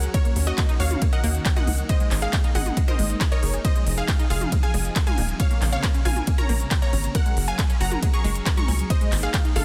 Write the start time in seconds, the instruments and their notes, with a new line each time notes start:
Already playing: analog synth pad F#3 C#4 G#4 A#4
0.03 closed hi-hat
0.14 analog synth pad D#3 A#3 F#4, synth pluck A#4 C#5, supersaw synth C#5, kick, closed hi-hat, ride
0.25 synth arpeggio sound A#3, closed hi-hat
0.36 analog synth bass D#2, open hi-hat
0.47 synth pluck F#4 D#5, supersaw synth D#5, closed hi-hat
0.58 synth arpeggio sound A#3, kick, clap, closed hi-hat, ride
0.69 synth arpeggio sound D#4, closed hi-hat
0.80 analog synth bass D#2, synth arpeggio sound F#4, synth pluck C#5 F5, supersaw synth F5, open hi-hat
0.91 closed hi-hat, mid tom
1.02 synth arpeggio sound A#3, kick, closed hi-hat, ride
1.13 synth arpeggio sound A#4, synth pluck D#5 F#5, supersaw synth F#5, closed hi-hat
1.24 analog synth bass D#2, synth arpeggio sound A#3, open hi-hat
1.35 closed hi-hat
1.46 synth arpeggio sound C#5, kick, clap, closed hi-hat, ride
1.56 synth arpeggio sound A#3, synth pluck D#5 F#5, supersaw synth F#5, closed hi-hat, mid tom
1.67 analog synth bass C#2, synth arpeggio sound D#4, open hi-hat
1.78 closed hi-hat
1.89 analog synth pad G#3 D#4, synth pluck C5 D#5, supersaw synth D#5, kick, closed hi-hat, ride
2.00 synth arpeggio sound G#3, closed hi-hat
2.11 analog synth bass G#1, clap, open hi-hat
2.22 synth pluck G#4 F5, supersaw synth F5, closed hi-hat
2.33 synth arpeggio sound G#3, kick, clap, closed hi-hat, ride
2.44 synth arpeggio sound D#4, closed hi-hat
2.55 analog synth bass G#1, synth arpeggio sound G#4, synth pluck D#5 F#5, supersaw synth F#5, open hi-hat, mid tom
2.66 closed hi-hat, mid tom
2.77 synth arpeggio sound G#3, kick, closed hi-hat, ride
2.88 synth arpeggio sound A#4, synth pluck C5 D#5, supersaw synth D#5, closed hi-hat, mid tom
2.99 analog synth bass G#1, synth arpeggio sound G#3, open hi-hat
3.10 closed hi-hat
3.21 synth arpeggio sound G#4, kick, clap, closed hi-hat, ride
3.32 synth pluck A#4 C#5, supersaw synth C#5, synth arpeggio sound D#5, closed hi-hat
3.43 analog synth bass F#1, synth arpeggio sound G#4, open hi-hat
3.54 synth arpeggio sound G#4, closed hi-hat
3.65 analog synth pad C3 F3 G#4, synth pluck C5 D#5, supersaw synth D#5, kick, closed hi-hat, ride
3.76 synth arpeggio sound G#3, closed hi-hat
3.87 analog synth bass F1, open hi-hat
3.97 synth pluck G#4 F5, supersaw synth F5, closed hi-hat
4.08 synth arpeggio sound G#3, kick, clap, closed hi-hat, ride
4.19 synth arpeggio sound D#4, closed hi-hat
4.30 analog synth bass F1, synth arpeggio sound F4, synth pluck G#4 F5, supersaw synth F5, open hi-hat
4.41 closed hi-hat, mid tom
4.52 synth arpeggio sound G#3, kick, closed hi-hat, ride
4.63 synth arpeggio sound G#4, synth pluck F5 G#5, supersaw synth G#5, closed hi-hat
4.74 analog synth bass F1, synth arpeggio sound G#3, open hi-hat
4.85 closed hi-hat
4.96 synth arpeggio sound C5, kick, clap, closed hi-hat, ride
5.07 synth arpeggio sound G#3, synth pluck F5 G#5, supersaw synth G#5, closed hi-hat, mid tom
5.18 analog synth bass D#1, synth arpeggio sound D#4, open hi-hat
5.29 closed hi-hat
5.40 analog synth pad C#3 A#3, synth pluck C#5 F5, supersaw synth F5, kick, closed hi-hat, ride
5.51 synth arpeggio sound A#3, closed hi-hat
5.62 analog synth bass A#1, clap, open hi-hat
5.72 synth pluck C#5 F5, supersaw synth F5, closed hi-hat
5.83 synth arpeggio sound A#3, kick, clap, closed hi-hat, ride
5.94 synth arpeggio sound C#4, closed hi-hat
6.05 analog synth bass A#1, synth arpeggio sound F4, synth pluck F5 G#5, supersaw synth G#5, open hi-hat, mid tom
6.16 closed hi-hat, mid tom
6.27 synth arpeggio sound A#3, kick, closed hi-hat, ride
6.38 synth arpeggio sound A#4, synth pluck C#5 A#5, supersaw synth A#5, closed hi-hat, mid tom
6.49 analog synth bass A#1, synth arpeggio sound A#3, open hi-hat
6.60 closed hi-hat
6.71 synth arpeggio sound C5, kick, clap, closed hi-hat, ride
6.82 synth arpeggio sound A#3, synth pluck C#5 A#5, supersaw synth A#5, closed hi-hat
6.93 analog synth bass G#1, synth arpeggio sound C#4, open hi-hat
7.04 closed hi-hat
7.15 analog synth pad F#3 C#4 G#4 A#4, synth pluck A#4 F#5, supersaw synth F#5, kick, closed hi-hat, ride
7.26 synth arpeggio sound G#3, closed hi-hat
7.37 analog synth bass F#1, open hi-hat
7.48 synth pluck F5 G#5, supersaw synth G#5, closed hi-hat
7.59 synth arpeggio sound G#3, kick, clap, closed hi-hat, ride
7.70 synth arpeggio sound C#4, closed hi-hat
7.81 analog synth bass F#1, synth arpeggio sound F#4, synth pluck F#5 A#5, supersaw synth A#5, open hi-hat
7.92 closed hi-hat, mid tom
8.02 synth arpeggio sound G#3, kick, closed hi-hat, ride
8.13 synth arpeggio sound G#4, synth pluck A#5 C#6, supersaw synth C#6, closed hi-hat
8.24 analog synth bass F#1, synth arpeggio sound G#3, open hi-hat
8.35 closed hi-hat
8.46 synth arpeggio sound A#4, kick, clap, closed hi-hat, ride
8.57 synth arpeggio sound G#3, synth pluck A#5 C#6, supersaw synth C#6, closed hi-hat, mid tom
8.68 analog synth bass C#2, synth arpeggio sound C#4, open hi-hat
8.79 closed hi-hat
8.90 analog synth pad G#3 A#3 D#4, synth pluck C5 D#5, supersaw synth D#5, kick, closed hi-hat, ride
9.01 synth arpeggio sound G#3, closed hi-hat
9.12 analog synth bass G#1, clap, open hi-hat
9.23 synth pluck G#4 F5, supersaw synth F5, closed hi-hat
9.34 synth arpeggio sound G#3, kick, clap, closed hi-hat, ride
9.45 synth arpeggio sound D#4, closed hi-hat
9.56 analog synth bass G#1, synth arpeggio sound G#4, synth pluck A4 F5, supersaw synth F5, open hi-hat, mid tom